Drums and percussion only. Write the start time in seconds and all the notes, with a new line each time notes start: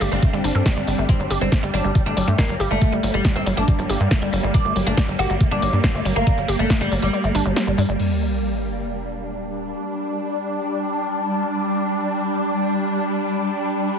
0.01 open hi-hat
0.12 closed hi-hat
0.23 kick, closed hi-hat
0.33 closed hi-hat
0.44 open hi-hat
0.55 closed hi-hat
0.66 kick, snare, closed hi-hat
0.77 closed hi-hat
0.87 open hi-hat
0.98 closed hi-hat
1.09 kick, closed hi-hat
1.20 closed hi-hat
1.31 open hi-hat
1.52 kick, snare, closed hi-hat
1.63 closed hi-hat
1.74 open hi-hat
1.84 closed hi-hat
1.95 kick, closed hi-hat
2.06 closed hi-hat
2.17 open hi-hat
2.28 closed hi-hat
2.38 kick, snare, closed hi-hat
2.49 closed hi-hat
2.60 open hi-hat
2.71 closed hi-hat
2.82 kick, closed hi-hat
2.92 closed hi-hat
3.03 open hi-hat
3.14 closed hi-hat
3.25 kick, snare, closed hi-hat
3.36 closed hi-hat
3.46 open hi-hat
3.57 closed hi-hat
3.68 kick, closed hi-hat
3.79 closed hi-hat
3.90 open hi-hat
4.00 closed hi-hat
4.11 kick, snare, closed hi-hat
4.22 closed hi-hat
4.33 open hi-hat
4.43 closed hi-hat
4.54 kick, closed hi-hat
4.65 closed hi-hat
4.76 open hi-hat
4.87 closed hi-hat
4.97 kick, snare, closed hi-hat
5.08 closed hi-hat
5.19 open hi-hat
5.30 closed hi-hat
5.41 kick, closed hi-hat
5.51 closed hi-hat
5.62 open hi-hat
5.73 closed hi-hat
5.84 kick, snare, closed hi-hat
5.95 closed hi-hat
6.05 open hi-hat
6.16 closed hi-hat
6.27 kick, closed hi-hat
6.38 closed hi-hat
6.49 open hi-hat
6.59 closed hi-hat
6.70 kick, snare, closed hi-hat
6.81 snare, closed hi-hat
6.92 open hi-hat
7.02 closed hi-hat
7.13 closed hi-hat
7.24 closed hi-hat
7.35 open hi-hat
7.46 closed hi-hat
7.56 snare, closed hi-hat
7.67 closed hi-hat
7.78 open hi-hat
7.89 closed hi-hat
8.00 crash